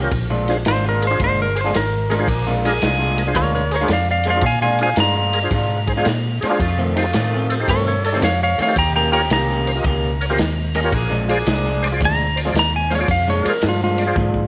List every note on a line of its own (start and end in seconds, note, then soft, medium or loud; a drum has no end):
0.00 0.11 C2 medium
0.00 0.11 C#4 medium
0.00 0.12 F4 medium
0.00 0.12 G4 medium
0.00 0.12 A#4 medium
0.11 0.64 A#1 medium
0.11 kick loud
0.11 ride medium
0.30 0.52 A#2 medium
0.30 0.51 G#3 medium
0.30 0.51 D4 medium
0.30 0.51 F4 medium
0.48 0.57 D4 medium
0.48 0.57 F4 medium
0.48 0.58 G#4 medium
0.48 0.58 C5 loud
0.48 snare soft
0.48 ride medium
0.65 1.19 G#1 medium
0.65 0.85 A#2 medium
0.65 0.84 G#3 medium
0.65 0.84 D4 medium
0.65 0.83 F4 medium
0.65 0.85 C5 loud
0.65 snare loud
0.65 ride medium
0.84 1.06 A#2 medium
0.84 1.06 G#3 medium
0.84 1.05 D4 medium
0.84 1.05 F4 medium
0.89 1.04 A#4 medium
1.02 1.06 G#4 medium
1.02 1.07 A#4 medium
1.02 ride medium
1.07 1.20 D4 medium
1.07 1.20 F4 medium
1.07 1.20 G#4 medium
1.07 1.22 C5 medium
1.12 1.20 C5 medium
1.20 1.72 G1 medium
1.20 1.44 A#2 medium
1.20 1.44 G#3 medium
1.20 1.44 D4 medium
1.20 1.44 F4 medium
1.20 kick loud
1.20 ride medium
1.24 1.40 C5 loud
1.42 1.58 A#4 medium
1.55 1.60 G#4 medium
1.55 1.61 C5 medium
1.55 ride medium
1.61 1.73 D4 medium
1.61 1.76 C5 medium
1.65 1.74 A#2 medium
1.65 1.75 G#3 medium
1.65 1.74 D4 medium
1.65 1.74 F4 medium
1.65 1.75 F4 medium
1.65 1.74 G#4 medium
1.65 1.74 C5 medium
1.74 2.27 G#1 medium
1.74 2.80 A#4 loud
1.74 muted clean electric guitar stroke soft
1.74 snare medium
1.74 ride medium
2.10 2.22 A#2 medium
2.10 2.22 G#3 medium
2.10 2.22 D4 medium
2.10 2.23 F4 loud
2.10 2.15 G#4 medium
2.10 2.15 A#4 medium
2.10 ride medium
2.18 2.28 D4 medium
2.18 2.28 F4 medium
2.18 2.28 G#4 medium
2.18 2.29 C5 medium
2.27 2.80 A#1 medium
2.27 2.49 A#3 medium
2.27 2.50 D4 medium
2.27 2.50 G#4 medium
2.27 kick loud
2.27 ride medium
2.47 2.68 A#2 medium
2.47 2.68 G#3 medium
2.47 2.68 D4 medium
2.47 2.67 F4 loud
2.64 3.25 A#3 medium
2.64 2.73 D4 medium
2.64 3.26 D4 medium
2.64 2.74 F4 medium
2.64 3.26 G#4 loud
2.64 2.74 G#4 medium
2.64 2.74 A#4 loud
2.64 snare soft
2.64 ride medium
2.82 3.34 C2 loud
2.82 2.99 A#2 medium
2.82 2.99 G#3 medium
2.82 2.98 D4 medium
2.82 2.98 F4 medium
2.82 snare loud
2.82 ride medium
2.99 3.21 A#2 medium
2.99 3.21 G#3 medium
2.99 3.21 D4 medium
2.99 3.21 F4 loud
3.17 3.22 G#4 medium
3.17 3.23 A#4 medium
3.17 ride medium
3.27 3.36 D4 medium
3.27 3.36 F4 medium
3.27 3.36 G#4 medium
3.27 3.37 C5 medium
3.34 3.88 D2 medium
3.34 3.59 A#2 medium
3.34 3.59 G#3 medium
3.34 3.59 D4 medium
3.34 3.60 F4 medium
3.34 3.54 A#4 medium
3.34 3.54 C#5 medium
3.34 kick loud
3.34 ride medium
3.55 3.71 A#4 medium
3.55 3.72 C#5 medium
3.71 3.77 G#4 medium
3.71 3.90 A#4 medium
3.71 3.77 C5 medium
3.71 ride medium
3.76 3.92 C#5 medium
3.81 3.89 A#2 medium
3.81 3.90 G#3 medium
3.81 3.90 D4 medium
3.81 3.90 F4 loud
3.81 3.91 F4 medium
3.81 3.91 G#4 medium
3.81 3.91 C5 medium
3.88 4.42 F2 loud
3.88 muted clean electric guitar stroke soft
3.88 snare loud
3.88 ride medium
3.92 4.08 D5 medium
3.92 4.09 F5 medium
4.11 4.26 D5 medium
4.11 4.27 F5 medium
4.24 4.38 A#2 medium
4.24 4.38 G#3 medium
4.24 4.38 D4 medium
4.24 4.38 F4 medium
4.24 4.30 G#4 medium
4.24 ride medium
4.28 4.32 C5 medium
4.28 4.45 D5 medium
4.28 4.44 F5 medium
4.36 4.44 D4 medium
4.36 4.45 F4 medium
4.36 4.45 G#4 medium
4.36 4.45 C5 medium
4.41 4.96 A#2 medium
4.41 kick loud
4.41 ride medium
4.46 4.61 F5 medium
4.46 4.61 G#5 medium
4.62 4.84 A#2 medium
4.62 4.84 G#3 medium
4.62 4.83 D4 medium
4.62 4.83 F4 medium
4.62 4.79 F5 medium
4.62 4.80 G#5 medium
4.79 4.89 D4 medium
4.79 4.90 F4 medium
4.79 4.90 G#4 medium
4.79 4.90 C5 medium
4.79 4.98 F5 medium
4.79 ride medium
4.83 4.99 G#5 medium
4.96 5.50 G2 medium
4.96 5.16 A#2 medium
4.96 5.15 G#3 medium
4.96 5.15 D4 medium
4.96 5.15 F4 medium
4.96 snare loud
4.96 ride medium
5.00 6.57 A#5 loud
5.16 5.38 A#2 medium
5.16 5.37 G#3 medium
5.16 5.37 D4 medium
5.16 5.37 F4 medium
5.33 5.39 G#4 medium
5.33 5.39 A#4 medium
5.33 ride medium
5.43 5.52 D4 medium
5.43 5.52 F4 medium
5.43 5.53 G#4 medium
5.43 5.53 C5 medium
5.51 6.04 G#2 medium
5.51 5.76 A#2 medium
5.51 5.76 G#3 medium
5.51 5.77 D4 medium
5.51 5.77 F4 medium
5.51 kick loud
5.51 ride medium
5.87 5.92 G#4 medium
5.87 5.93 C5 medium
5.87 kick medium
5.87 ride medium
5.96 6.06 A#2 medium
5.96 6.06 G#3 medium
5.96 6.06 D4 medium
5.96 6.06 D4 loud
5.96 6.06 F4 medium
5.96 6.06 F4 loud
5.96 6.06 G#4 medium
5.96 6.07 C5 medium
6.05 6.40 A#2 medium
6.05 muted clean electric guitar stroke soft
6.05 snare loud
6.05 ride medium
6.41 6.55 A#2 medium
6.41 6.55 G#3 medium
6.41 6.55 D4 medium
6.41 6.55 F4 medium
6.41 6.46 G#4 medium
6.41 6.47 C5 medium
6.41 muted fingered electric bass stroke soft
6.41 ride medium
6.50 6.60 D4 medium
6.50 6.60 F4 medium
6.50 6.60 G#4 medium
6.50 6.61 C5 loud
6.59 7.13 F2 medium
6.59 6.82 A3 medium
6.59 6.82 D#4 medium
6.59 6.83 F4 loud
6.59 kick loud
6.59 ride medium
6.79 7.00 F2 medium
6.79 7.00 D#3 medium
6.79 7.00 A3 medium
6.79 7.00 C4 loud
6.95 7.57 A3 medium
6.95 7.05 D#4 medium
6.95 7.58 D#4 medium
6.95 7.58 F4 loud
6.95 7.06 G4 medium
6.95 7.06 A4 medium
6.95 7.06 C5 medium
6.95 snare soft
6.95 ride medium
7.13 7.33 F2 medium
7.13 7.67 A2 loud
7.13 7.33 D#3 medium
7.13 7.33 A3 medium
7.13 7.32 C4 medium
7.13 snare loud
7.13 ride medium
7.34 7.55 F2 medium
7.34 7.54 D#3 medium
7.34 7.54 A3 medium
7.34 7.54 C4 medium
7.50 7.55 A4 medium
7.50 7.56 C5 loud
7.50 ride medium
7.59 7.69 D#4 medium
7.59 7.69 G4 medium
7.59 7.69 A4 medium
7.59 7.69 C5 medium
7.68 7.93 F2 medium
7.68 8.21 G2 medium
7.68 7.93 D#3 medium
7.68 7.93 A3 medium
7.68 7.93 C4 medium
7.68 7.85 A4 medium
7.68 7.87 C#5 loud
7.68 kick loud
7.68 ride medium
7.86 8.03 A4 medium
7.86 8.05 C#5 medium
8.04 8.09 A4 medium
8.04 8.22 A4 medium
8.04 8.23 C#5 medium
8.04 8.10 D5 medium
8.04 ride medium
8.12 8.23 D#3 medium
8.12 8.23 A3 medium
8.12 8.23 C4 loud
8.12 8.22 D#4 medium
8.12 8.22 G4 medium
8.12 8.23 A4 medium
8.12 8.23 C5 medium
8.16 8.22 F2 medium
8.22 8.56 F2 medium
8.22 8.40 C#5 medium
8.22 8.41 F5 medium
8.22 muted clean electric guitar stroke soft
8.22 snare loud
8.22 ride medium
8.43 8.59 C#5 medium
8.43 8.60 F5 medium
8.58 8.71 F2 medium
8.58 8.71 D#3 medium
8.58 8.71 A3 loud
8.58 8.71 C4 loud
8.58 8.63 A4 medium
8.58 8.64 C5 medium
8.58 8.77 C#5 medium
8.58 muted fingered electric bass stroke soft
8.58 ride medium
8.62 8.78 F5 medium
8.67 8.76 D#4 medium
8.67 8.77 G4 medium
8.67 8.77 A4 medium
8.67 8.77 C5 medium
8.76 9.29 D#2 medium
8.76 9.70 C#4 medium
8.76 9.71 D#4 medium
8.76 9.72 G4 medium
8.76 8.94 G5 medium
8.76 8.95 A#5 loud
8.76 kick loud
8.76 ride medium
8.96 9.17 D#3 medium
8.96 9.17 A#3 medium
8.96 9.16 C#4 medium
8.96 9.16 G4 loud
8.96 9.11 G5 medium
8.96 9.12 A#5 medium
9.12 9.21 F4 medium
9.12 9.22 G4 medium
9.12 9.22 A#4 medium
9.12 9.22 C#5 medium
9.12 9.29 G5 medium
9.12 9.30 A#5 medium
9.12 ride medium
9.30 9.83 C2 medium
9.30 9.49 D#3 medium
9.30 9.49 A#3 medium
9.30 9.49 C#4 medium
9.30 9.48 G4 medium
9.30 10.90 A#5 medium
9.30 snare loud
9.30 ride medium
9.49 9.71 D#3 medium
9.49 9.71 A#3 medium
9.49 9.70 C#4 medium
9.49 9.70 G4 medium
9.66 9.71 A#4 medium
9.66 9.72 C5 medium
9.66 ride medium
9.75 9.84 F4 medium
9.75 9.85 G4 medium
9.75 9.85 A#4 medium
9.75 9.85 D#5 medium
9.84 10.37 C#2 medium
9.84 10.09 D#3 medium
9.84 10.09 A#3 loud
9.84 10.09 C#4 medium
9.84 10.09 G4 loud
9.84 kick loud
9.84 ride medium
10.21 10.25 A#4 medium
10.21 10.26 C#5 medium
10.21 ride medium
10.30 10.38 D#3 medium
10.30 10.38 A#3 medium
10.30 10.38 C#4 loud
10.30 10.39 F4 medium
10.30 10.39 G4 medium
10.30 10.39 G4 loud
10.30 10.39 A#4 medium
10.30 10.40 C5 medium
10.38 10.92 D#2 loud
10.38 muted clean electric guitar stroke soft
10.38 snare loud
10.38 ride medium
10.75 10.87 D#3 medium
10.75 10.87 A#3 medium
10.75 10.87 C#4 medium
10.75 10.87 G4 medium
10.75 10.80 A#4 loud
10.75 10.81 D#5 loud
10.75 ride medium
10.84 10.93 F4 medium
10.84 10.93 G4 medium
10.84 10.93 A#4 medium
10.84 10.94 C#5 medium
10.92 11.45 A#1 medium
10.92 11.15 A#3 medium
10.92 11.15 D4 medium
10.92 11.16 G#4 loud
10.92 kick loud
10.92 ride medium
11.10 11.32 A#2 medium
11.10 11.32 F3 medium
11.10 11.32 G#3 medium
11.10 11.32 D4 loud
11.29 11.90 A#3 medium
11.29 11.91 D4 medium
11.29 11.38 F4 medium
11.29 11.38 G#4 medium
11.29 11.91 G#4 loud
11.29 11.38 C5 medium
11.29 11.39 D5 loud
11.29 ride medium
11.46 11.99 C2 loud
11.46 11.65 A#2 medium
11.46 11.64 F3 medium
11.46 11.64 G#3 medium
11.46 11.64 D4 medium
11.46 snare loud
11.46 ride medium
11.65 11.87 A#2 medium
11.65 11.86 F3 medium
11.65 11.86 G#3 medium
11.65 11.86 D4 loud
11.83 11.87 C5 medium
11.83 11.88 D5 loud
11.83 ride medium
11.92 12.01 F4 medium
11.92 12.01 G#4 medium
11.92 12.02 C5 medium
11.92 12.02 D5 medium
12.00 12.54 D2 medium
12.00 12.24 A#2 medium
12.00 12.25 F3 medium
12.00 12.25 G#3 loud
12.00 12.25 D4 medium
12.00 kick loud
12.00 ride medium
12.05 12.38 A#5 loud
12.36 12.41 C5 medium
12.36 12.42 D5 medium
12.36 ride medium
12.45 12.54 A#2 medium
12.45 12.54 F3 medium
12.45 12.54 G#3 medium
12.45 12.54 D4 loud
12.45 12.54 F4 medium
12.45 12.55 G#4 medium
12.45 12.55 C5 medium
12.45 12.55 D5 medium
12.54 13.07 D#2 loud
12.54 muted clean electric guitar stroke soft
12.54 snare loud
12.54 ride medium
12.59 12.75 A#5 medium
12.76 12.92 G#5 medium
12.90 13.03 A#2 medium
12.90 13.03 F3 medium
12.90 13.03 G#3 medium
12.90 13.03 D4 loud
12.90 12.95 C5 medium
12.90 12.96 F5 medium
12.90 ride medium
12.95 13.08 F4 medium
12.95 13.11 C#5 medium
12.99 13.09 G#4 medium
12.99 13.09 C5 medium
12.99 13.09 D5 medium
13.08 13.43 F2 medium
13.08 13.28 F5 medium
13.08 kick loud
13.08 ride medium
13.28 13.49 A#2 medium
13.28 13.49 F3 medium
13.28 13.49 G#3 medium
13.28 13.48 D4 loud
13.28 13.46 C#5 medium
13.43 13.53 F4 medium
13.43 13.54 G#4 medium
13.43 13.54 C5 medium
13.43 13.54 D5 medium
13.43 muted fingered electric bass stroke soft
13.43 ride medium
13.50 13.65 A#4 medium
13.62 14.16 G2 loud
13.62 13.81 A#2 medium
13.62 13.81 F3 medium
13.62 13.81 G#3 medium
13.62 13.81 D4 medium
13.62 snare loud
13.62 ride medium
13.69 13.83 F4 medium
13.82 14.03 A#2 medium
13.82 14.03 F3 medium
13.82 14.03 G#3 medium
13.82 14.03 D4 medium
13.82 14.47 F4 loud
13.97 14.03 C5 medium
13.97 14.04 D5 medium
13.97 ride medium
14.06 14.16 F4 medium
14.06 14.16 G#4 medium
14.06 14.17 C5 medium
14.06 14.17 D5 medium
14.16 14.47 G#2 medium
14.16 14.41 A#2 medium
14.16 14.41 F3 medium
14.16 14.42 G#3 medium
14.16 14.42 D4 medium
14.16 kick loud
14.16 high tom medium
14.34 kick medium